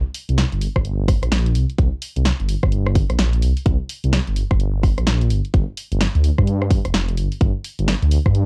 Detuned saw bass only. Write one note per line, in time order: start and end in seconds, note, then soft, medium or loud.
0.29 0.44 C2 medium
0.52 0.68 G1 loud
0.76 1.16 G1 medium
1.22 1.29 A#1 medium
1.31 1.56 A#1 loud
1.55 1.65 C2 medium
1.79 1.89 C2 loud
2.16 2.32 C2 medium
2.40 2.55 G1 loud
2.63 3.04 G1 medium
3.10 3.17 A#1 medium
3.19 3.44 A#1 loud
3.43 3.53 C2 medium
3.66 3.76 C2 medium
4.04 4.19 C2 medium
4.27 4.43 G1 loud
4.51 4.91 G1 loud
4.98 5.04 A#1 medium
5.07 5.32 A#1 loud
5.30 5.40 G1 medium
5.54 5.64 G1 loud
5.92 6.07 G1 medium
6.15 6.30 D2 loud
6.38 6.79 G2 medium
6.85 6.92 F1 medium
6.94 7.19 F1 loud
7.18 7.28 G1 medium
7.41 7.51 G1 loud
7.79 7.94 G1 medium
8.02 8.18 D2 loud
8.26 8.46 G2 medium